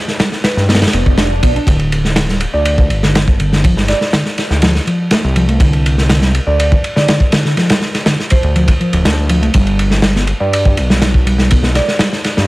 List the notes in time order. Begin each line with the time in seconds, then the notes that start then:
0.08 snare
0.20 G3, snare, ride
0.32 snare
0.44 B4, snare, ride
0.57 G2, snare
0.69 B3, snare, ride, swell
0.75 snare, ride
0.82 snare, ride
0.87 snare, ride
0.93 F1 B3, ride
1.06 kick
1.18 D4, snare, ride
1.43 B1 B3, kick, ride
1.56 D4, ride
1.67 D1 D3, kick, ride
1.79 ride
1.92 ride
2.05 snare
2.16 D3, snare, ride
2.29 G3, snare
2.40 ride
2.54 D2 D5
2.65 D5, ride
2.78 kick
2.90 G1, ride
3.03 D3, snare
3.15 D3, snare, ride
3.28 kick
3.40 D3, ride
3.53 D3, snare
3.64 F3, kick, ride
3.77 G3, snare
3.88 D5, snare, ride
4.01 snare
4.13 D3, snare, ride
4.26 snare
4.38 snare, ride
4.50 D2, snare
4.62 F3, snare, ride
4.75 snare
4.87 F3, ride
5.11 A3, snare, ride
5.24 C2
5.36 F3, ride
5.49 A3, ride
5.60 D3, kick, ride
5.73 ride
5.86 ride
5.98 snare
6.10 D3, snare, ride
6.22 G3, snare
6.35 ride
6.47 D2 D5
6.59 D5, ride
6.72 kick
6.84 ride
6.96 D3 D5, snare
7.08 D3, snare, ride
7.20 kick
7.32 D3, snare, ride
7.45 D3, snare
7.57 F3, snare, ride
7.70 G3, snare, ride
7.82 snare
7.95 snare, ride
8.06 D3, snare, ride
8.20 snare
8.30 C5, kick, ride
8.43 D2, ride
8.56 F3, ride
8.68 kick, ride
8.80 F3, ride
8.93 D1, ride
9.05 D2 A3, snare, ride
9.29 F3, ride
9.42 C2 A3, ride
9.54 G1 G3, kick, ride
9.67 ride
9.79 ride
9.91 snare
10.02 G3, snare, ride
10.16 B3, snare
10.27 ride
10.40 G2 D5
10.52 D5, ride
10.65 kick
10.77 B1, ride
10.90 G3, snare
11.02 G3, snare, ride
11.14 kick
11.26 G3, ride
11.38 G3, snare
11.51 B3, kick, ride
11.63 B3, snare
11.75 D5, snare, ride
11.88 snare
11.99 G3, snare, ride
12.13 snare
12.24 snare, ride
12.37 G2, snare